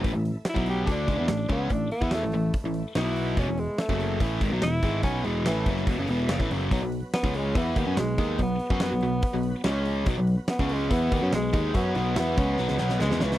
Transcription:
<<
  \new Staff \with { instrumentName = "Tenor saxophone" } { \time 4/4 \key b \mixolydian \tempo 4 = 143 r4 e'8 g'8 d'4. b8 | d'8 b8 a4 r4 e'4 | cis'8 gis8 a4 r4 e'4 | cis'8 gis8 e4 r2 |
r4 b8 gis8 b4 gis4 | b4 b2 r4 | r4 b8 gis8 b4 gis4 | b4 b2 gis8 e8 | }
  \new Staff \with { instrumentName = "Tonewheel organ" } { \time 4/4 \key b \mixolydian d''8 r2. r8 | r1 | r1 | r1 |
r1 | r1 | r1 | r1 | }
  \new Staff \with { instrumentName = "Tonewheel organ" } { \time 4/4 \key b \mixolydian <a e' e''>1~ | <a e' e''>2. <fis b b'>4 | <e b a'>1~ | <e b a'>1 |
<fis b b'>1~ | <fis b b'>2. <gis cis' cis''>4 | <fis b b'>1~ | <fis b b'>1 | }
  \new Staff \with { instrumentName = "Overdriven electric guitar" } { \clef bass \time 4/4 \key b \mixolydian <a, e>16 <a, e>8 r8 <b, fis b>8. <d a d'>8 <cis gis>16 <e b>16 <a, e>8 <cis gis cis'>8 | <a, e>8 r16 <e b e'>8 <a, e>16 <a, e>8 r16 <a, e>8 r16 <b, fis b>4 | <e, b,>16 <e, b,>8 r8 <fis, cis fis>8. <a, e a>8 <gis, dis>16 <b, fis>16 <e, b,>8 <gis, dis gis>8 | <b, fis b>8 <e, b, e>8 <a, e a>8 <fis, cis fis>8 <e, b,>16 <fis, cis>16 <e, b, e>8 <fis, cis>16 <a, e>16 <fis, cis fis>8 |
<b, fis>16 <b, fis>8 r8 <cis gis cis'>8. <e b e'>8 <dis ais>16 <fis cis'>16 <b, fis>8 <dis ais dis'>8 | <b, fis>8 r16 <fis cis' fis'>8 <b, fis>16 <b, fis>8 r16 <b, fis>8 r16 <cis gis cis'>4 | <b, fis>16 <b, fis>8 r8 <cis gis cis'>8. <e b e'>8 <dis ais>16 <fis cis'>16 <b, fis>8 <dis ais dis'>8 | <fis cis' fis'>8 <b, fis b>8 <e b e'>8 <cis gis cis'>8 <b, fis>16 <cis gis>16 <b, fis b>8 <cis gis>16 <e b>16 <cis gis cis'>8 | }
  \new Staff \with { instrumentName = "Picked electric bass" } { \clef bass \time 4/4 \key b \mixolydian a,,16 a,,8 r8 b,,8. d,8 cis,16 e,16 a,,8 cis,8 | a,,8 r16 e,8 a,,16 a,,8 r16 a,,8 r16 b,,4 | e,,16 e,,8 r8 fis,,8. a,,8 gis,,16 b,,16 e,,8 gis,,8 | b,,8 e,,8 a,,8 fis,,8 e,,16 fis,,16 e,,8 fis,,16 a,,16 fis,,8 |
b,,16 b,,8 r8 cis,8. e,8 dis,16 fis,16 b,,8 dis,8 | b,,8 r16 fis,8 b,,16 b,,8 r16 b,,8 r16 cis,4 | b,,16 b,,8 r8 cis,8. e,8 dis,16 fis,16 b,,8 dis,8 | fis,8 b,,8 e,8 cis,8 b,,16 cis,16 b,,8 cis,16 e,16 cis,8 | }
  \new DrumStaff \with { instrumentName = "Drums" } \drummode { \time 4/4 <hho bd>8 hho8 <hho sn>16 bd16 hho8 <hho bd>8 <hho bd>8 <hho sn>8 <hho bd>8 | <hho bd>8 hho16 bd16 <hho sn>8 hho8 <hho bd>8 hho8 <hho sn>8 hho8 | <hho bd>8 hho8 <hho sn>16 bd16 hho8 <hho bd>8 <hho bd>8 <hho sn>8 <hho bd>8 | <hho bd>8 hho8 <hho sn>8 <hho bd>16 sn16 <hho bd>8 hho8 <hho sn>16 bd16 hho8 |
<hho bd>8 hho8 <hho sn>16 bd16 hho8 <hho bd>8 <hho bd>8 <hho sn>8 <hho bd>8 | <hho bd>8 hho16 bd16 <hho sn>8 hho8 <hho bd>8 hho8 <hho sn>8 hho8 | <hho bd>8 hho8 <hho sn>16 bd16 hho8 <hho bd>8 <hho bd>8 <hho sn>8 <hho bd>8 | <hho bd>8 hho8 <hho sn>8 <hho bd>8 sn16 sn16 sn16 sn16 sn16 sn16 sn16 sn16 | }
>>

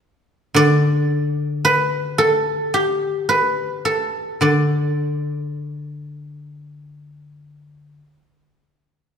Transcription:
<<
  \new Staff \with { instrumentName = "Guzheng" } { \time 4/4 \tempo 4 = 53 r8 d''4 b'8 a'8 g'8 b'8 a'8 | d''4 r2. | }
  \new Staff \with { instrumentName = "Guzheng" } { \clef bass \time 4/4 r8 d2. r8 | d2. r4 | }
>>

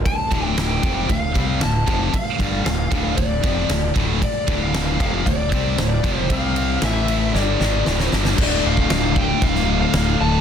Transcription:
<<
  \new Staff \with { instrumentName = "Lead electric guitar" } { \time 4/4 \key d \minor \tempo 4 = 115 a''4 g''4 f''4 a''4 | f''4 f''4 d''4. r8 | d''8. f''8. f''8 d''4 d''4 | f''4 e''4 d''4. r8 |
d''8 f''8 f''8 g''8 f''8. f''8. a''8 | }
  \new Staff \with { instrumentName = "Distorted electric guitar" } { \clef bass \time 4/4 \key d \minor r8 <d, a, d>4 <f, c f>8 <d, a,>8 <c g c'>8 <d, a,>8 <f, c f>8 | r8 <g, d g>8 <d, a,>8 <d, a, d>8 <d, a,>8 <f, c f>8 <d, a,>8 <d, a, d>8 | r8 <d, a, d>4 <f, c f>8 <d, a,>8 <c g c'>8 <d, a,>8 <f, c f>8 | <c g c'>4 <a, e a>4 <g, d g>8 <gis, ees gis>8 <d, a, d>8 <g, d g>8 |
<d, a, d>4. <d, a, d>2~ <d, a, d>8 | }
  \new Staff \with { instrumentName = "Overdriven electric guitar" } { \clef bass \time 4/4 \key d \minor r8 <d, a, d>4 <f, c f>8 <d, a,>8 <c g c'>8 <d, a,>8 <f, c f>8 | r8 <g, d g>8 <d, a,>8 <d, a, d>8 <d, a,>8 <f, c f>8 <d, a,>8 <d, a, d>8 | r8 <d, a, d>4 <f, c f>8 <d, a,>8 <c g c'>8 <d, a,>8 <f, c f>8 | <c g c'>4 <a, e a>4 <g, d g>8 <gis, ees gis>8 <d, a, d>8 <g, d g>8 |
<d, a, d>1 | }
  \new Staff \with { instrumentName = "Fingered electric bass" } { \clef bass \time 4/4 \key d \minor r8 d,,4 f,,8 d,,8 c,8 d,,8 f,,8 | r8 g,,8 d,,8 d,,8 d,,8 f,,8 d,,8 d,,8 | r8 d,,4 f,,8 d,,8 c,8 d,,8 f,,8 | c,4 a,,4 g,,8 gis,,8 d,,8 g,,8 |
d,,8 d,,8 d,,4 d,,4 d,,8 d,,8 | }
  \new DrumStaff \with { instrumentName = "Drums" } \drummode { \time 4/4 <bd cymr>8 <bd cymr>8 <cymr sn>8 <bd cymr>8 <bd cymr>8 <bd cymr>8 <cymr sn>8 <bd cymr>8 | <bd cymr>8 <bd cymr>8 <cymr sn>8 <bd cymr>8 <bd cymr>8 <bd cymr>8 <cymr sn>8 <bd cymr>8 | <bd cymr>8 <bd cymr>8 <cymr sn>8 <bd cymr>8 <bd cymr>8 <bd cymr>8 <cymr sn>8 <bd cymr>8 | <bd cymr>8 cymr8 <cymr sn>8 cymr8 sn8 sn8 sn16 sn16 sn16 sn16 |
<cymc bd>8. bd16 <cymc sn>8 bd8 <cymc bd>16 sn8. <cymc sn>4 | }
>>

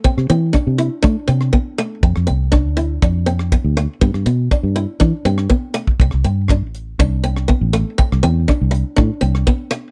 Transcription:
<<
  \new Staff \with { instrumentName = "Steel-string acoustic guitar" } { \time 4/4 \key g \mixolydian \tempo 4 = 121 c'8 c'8 d'8 e'8 d'8 c'8 b8 a8 | c'8 c'8 d'8 e'8 d'8 c'8 b8 a8 | b8 b8 d'8 e'8 d'8 c'8 b8 a8 | c'8 c'8 d'8 r8 d'8 c'8 b8 a8 |
c'8 c'8 d'8 e'8 d'8 c'8 b8 a8 | }
  \new Staff \with { instrumentName = "Fingered electric bass" } { \clef bass \time 4/4 \key g \mixolydian r16 c16 e8 r16 c8 r16 a16 r16 c8 r4 | f,16 f,16 c,8. d,8. f,4~ f,16 d,8 r16 | g,16 g,16 b,8 r16 g,8 r16 e16 r16 g,8 r4 | c,16 c,16 g,8. a,,8. c,4~ c,16 a,,8 r16 |
r16 c,16 e,8 r16 c,8 r16 a,16 r16 c,8 r4 | }
  \new DrumStaff \with { instrumentName = "Drums" } \drummode { \time 4/4 bd16 ss16 hh8 <bd ss>8 hh8 <bd ss>8 hh16 ss16 bd8 <hh ss>8 | bd16 ss16 hh8 <bd ss>8 hh8 <bd ss>8 hh16 ss16 bd8 <hh ss>8 | bd16 ss16 hh8 <bd ss>8 hh8 <bd ss>8 hh16 ss16 bd8 <hh ss>16 bd16 | bd16 ss16 hh8 <bd ss>8 hh8 <bd ss>8 hh16 ss16 bd8 <hh ss>8 |
bd16 ss16 hh8 <bd ss>8 hh8 <bd ss>8 hh16 ss16 bd8 <hh ss>8 | }
>>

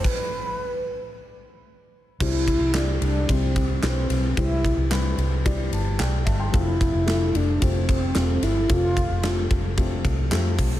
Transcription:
<<
  \new Staff \with { instrumentName = "Upright piano" } { \time 4/4 \key c \major \tempo 4 = 111 << { r1 | c4. r2 r8 | c4. r4 a''8 <d'' g''>8 <e'' a''>16 <g'' c'''>16~ | <g'' c'''>16 r2. r8. |
r1 | } \\ { r1 | <g c' e' g' c''>4 <g c' e' g' d''>4 <g c' e' g' c''>4 <g c' e' g' b' c''>4 | <g c' e' g' c''>4 <g c' e' g' b'>4 <g c' e' g' d''>4 r4 | <f a c' g' a'>4 <a c' f' g' a'>4 <a c' f' g' a'>4 <a c' f' g' a'>4 |
<a c' f' g' a'>4 <a c' f' g' a'>4 <a c' f' g' a'>4 <a c' f' g' a'>4 | } >> }
  \new Staff \with { instrumentName = "Soft synth lead" } { \time 4/4 \key c \major b'2. r4 | e'4. d'8 c'4 c'4 | e'4 r2. | e'4. d'8 c'4. e'8 |
f'2 r2 | }
  \new Staff \with { instrumentName = "Fingered electric bass" } { \clef bass \time 4/4 \key c \major r1 | c,8. c,8. c,8 c,4 b,,8 b,,8 | c,8. c,8. c,4 g,,8 b,,8 g,,8 | f,,8. f,,8. f,,8 f,,4 e,,8 g,,8 |
f,,8. f,,8. f,,4 c,8 f,8 b,,8 | }
  \new DrumStaff \with { instrumentName = "Drums" } \drummode { \time 4/4 <cymc bd>4 r4 r4 r4 | <cymc bd>8 <bd cymr>8 <hc cymr sn>8 cymr8 <bd cymr>8 <bd cymr>8 <hc cymr sn>8 <cymr sn>8 | <bd cymr>8 <bd cymr>8 <hc cymr sn>8 cymr8 <bd cymr>8 cymr8 <hc cymr sn>8 <bd cymr sn>8 | <bd cymr>8 <bd cymr>8 <hc cymr sn>8 cymr8 <bd cymr>8 <bd cymr>8 <hc cymr sn>8 <cymr sn>8 |
<bd cymr>8 <bd cymr>8 <hc cymr sn>8 <bd cymr>8 <bd cymr>8 <bd cymr>8 <hc cymr sn>8 <hho bd cymr>8 | }
>>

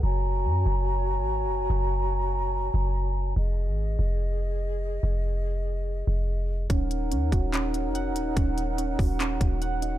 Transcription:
<<
  \new Staff \with { instrumentName = "Flute section" } { \time 4/4 \key ees \minor \tempo 4 = 144 <ges' des'' aes'' bes''>1~ | <ges' des'' aes'' bes''>1 | <aes' ees''>1~ | <aes' ees''>1 |
<ees' bes' des'' ges''>1~ | <ees' bes' des'' ges''>1 | }
  \new Staff \with { instrumentName = "Synth keys" } { \time 4/4 \key ees \minor r1 | r1 | r1 | r1 |
des'4 des'8 ges'8 des'4 ges''8 ees'8 | des'4 des'8 ges'8 des'4 ges''8 ees'8 | }
  \new Staff \with { instrumentName = "808-style bass" } { \clef bass \time 4/4 \key ees \minor ges,,4 ges,8 ges,,4~ ges,,16 aes,,8~ aes,,32 ges,,8~ ges,,32 | ges,,2~ ges,,8 ges,,4. | f,,8. aes,,8. f,,2~ f,,8 | f,,2~ f,,8 f,,4. |
ees,,4 ees,8 ees,,4~ ees,,16 f,,8~ f,,32 ees,,8~ ees,,32 | ees,,4. ees,,4 ees,,4. | }
  \new DrumStaff \with { instrumentName = "Drums" } \drummode { \time 4/4 r4 r4 r4 r4 | r4 r4 r4 r4 | r4 r4 r4 r4 | r4 r4 r4 r4 |
<hh bd>8 hh8 hh8 <hh bd>8 <hc hh>8 hh8 hh8 hh8 | <hh bd>8 hh8 hh8 <hho bd>8 <hc hh>8 <hh bd>8 hh8 hh8 | }
>>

